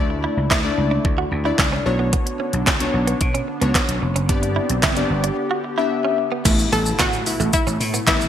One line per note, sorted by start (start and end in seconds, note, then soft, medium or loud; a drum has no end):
0.00 0.25 D2 loud
0.00 1.84 D3 medium
0.00 0.37 A3 medium
0.00 1.84 A3 medium
0.00 0.37 D4 medium
0.00 0.37 E4 medium
0.00 1.82 E4 medium
0.00 0.37 D5 loud
0.10 muted clean electric guitar stroke soft
0.24 0.33 E4 medium
0.37 0.47 C#2 medium
0.51 0.70 D2 medium
0.51 0.60 E4 medium
0.51 kick loud
0.51 snare medium
0.51 clap loud
0.64 1.12 A3 medium
0.64 1.12 D4 medium
0.64 1.12 E4 medium
0.64 1.12 D5 loud
0.78 0.97 C#2 medium
0.78 muted clean electric guitar stroke soft
0.91 1.01 D4 medium
1.05 1.24 D2 loud
1.05 kick loud
1.18 1.28 F#4 medium
1.32 1.50 D2 medium
1.32 muted clean electric guitar stroke soft
1.45 1.85 A3 medium
1.45 1.84 D4 medium
1.45 1.55 E4 medium
1.45 1.85 E4 medium
1.45 1.85 D5 medium
1.59 1.78 C#2 medium
1.59 kick loud
1.59 snare medium
1.59 clap loud
1.72 1.82 C#4 medium
1.86 2.14 B1 loud
1.86 4.27 D3 medium
1.86 2.61 B3 medium
1.86 6.42 B3 medium
1.86 2.62 D4 medium
1.86 4.27 D4 medium
1.86 2.62 F#4 medium
1.86 2.62 C#5 loud
1.86 muted clean electric guitar stroke soft
1.99 2.09 B3 medium
2.13 2.22 B3 medium
2.13 kick loud
2.13 closed hi-hat medium
2.13 swell medium
2.26 muted clean electric guitar stroke soft
2.26 closed hi-hat medium
2.40 2.49 C#4 medium
2.53 2.63 B1 medium
2.53 closed hi-hat medium
2.67 2.86 C#2 medium
2.67 2.77 C#4 medium
2.67 kick loud
2.67 snare medium
2.67 clap loud
2.67 closed hi-hat medium
2.80 3.28 B3 loud
2.80 3.28 D4 medium
2.80 3.28 F#4 medium
2.80 3.29 C#5 loud
2.80 closed hi-hat medium
2.94 3.13 B1 medium
2.94 muted clean electric guitar stroke soft
3.07 3.17 B3 medium
3.07 closed hi-hat medium
3.21 3.40 B2 loud
3.21 kick loud
3.21 closed hi-hat medium
3.34 3.44 C#4 medium
3.34 closed hi-hat medium
3.48 muted clean electric guitar stroke soft
3.61 3.71 C#2 medium
3.61 4.01 B3 medium
3.61 3.71 B3 medium
3.61 4.01 D4 medium
3.61 4.02 F#4 medium
3.61 4.02 C#5 loud
3.61 closed hi-hat medium
3.75 3.85 B3 medium
3.75 kick loud
3.75 snare medium
3.75 clap loud
3.75 closed hi-hat medium
3.89 3.98 B1 medium
3.89 closed hi-hat medium
4.02 4.11 F1 medium
4.02 muted clean electric guitar stroke soft
4.16 4.25 F#1 medium
4.16 4.25 C#4 medium
4.16 closed hi-hat medium
4.29 4.57 G1 loud
4.29 6.43 D3 medium
4.29 4.69 B3 medium
4.29 4.39 D4 medium
4.29 4.69 D4 medium
4.29 6.43 G4 medium
4.29 4.69 G4 medium
4.29 4.69 D5 loud
4.29 kick loud
4.29 closed hi-hat medium
4.43 muted clean electric guitar stroke soft
4.43 closed hi-hat medium
4.56 4.66 E4 medium
4.70 4.79 B1 medium
4.70 closed hi-hat medium
4.83 5.02 F#1 medium
4.83 4.93 E4 medium
4.83 kick loud
4.83 snare medium
4.83 clap loud
4.83 closed hi-hat medium
4.97 5.45 B3 loud
4.97 5.45 D4 medium
4.97 5.45 G4 medium
4.97 5.45 D5 loud
4.97 closed hi-hat medium
5.10 5.29 G1 loud
5.10 muted clean electric guitar stroke soft
5.24 5.33 D4 medium
5.24 closed hi-hat medium
5.51 5.60 F#4 medium
5.64 muted clean electric guitar stroke soft
5.78 6.18 B3 medium
5.78 6.18 D4 medium
5.78 5.87 E4 medium
5.78 6.18 G4 medium
5.78 6.18 E5 loud
6.05 6.14 C#4 medium
6.18 muted clean electric guitar stroke soft
6.32 6.41 B3 medium
6.45 6.64 A1 loud
6.45 8.28 B2 medium
6.45 6.61 A3 medium
6.45 6.55 A3 medium
6.45 8.28 A3 medium
6.45 6.61 B3 medium
6.45 8.28 E4 medium
6.45 6.61 E4 loud
6.45 kick loud
6.45 closed hi-hat medium
6.45 crash loud
6.45 impact medium
6.45 shaker medium
6.59 muted clean electric guitar stroke soft
6.59 shaker medium
6.72 6.91 A1 loud
6.72 7.04 A3 medium
6.72 7.04 B3 medium
6.72 6.82 B3 medium
6.72 7.04 E4 medium
6.72 7.00 A4 loud
6.72 open hi-hat medium
6.72 shaker soft
6.86 shaker medium
6.99 7.18 A2 loud
6.99 7.09 B3 medium
6.99 7.50 F#4 loud
6.99 kick loud
6.99 snare loud
6.99 clap loud
6.99 closed hi-hat medium
6.99 shaker medium
7.13 shaker medium
7.26 7.74 A3 medium
7.26 7.74 B3 medium
7.26 7.74 E4 medium
7.26 muted clean electric guitar stroke soft
7.26 open hi-hat medium
7.26 shaker medium
7.40 7.49 A1 medium
7.40 7.49 A3 medium
7.40 shaker medium
7.53 8.06 E4 loud
7.53 kick loud
7.53 closed hi-hat medium
7.53 shaker medium
7.67 7.76 A1 loud
7.67 7.76 C#4 medium
7.67 shaker medium
7.80 7.99 A2 loud
7.80 muted clean electric guitar stroke soft
7.80 open hi-hat medium
7.80 shaker medium
7.94 8.03 B3 medium
7.94 shaker medium
8.07 8.26 A1 loud
8.07 8.24 A3 medium
8.07 8.17 B3 medium
8.07 8.24 B3 medium
8.07 8.28 E4 loud
8.07 8.24 E4 medium
8.07 kick loud
8.07 snare medium
8.07 clap loud
8.07 closed hi-hat medium
8.07 shaker medium
8.21 shaker medium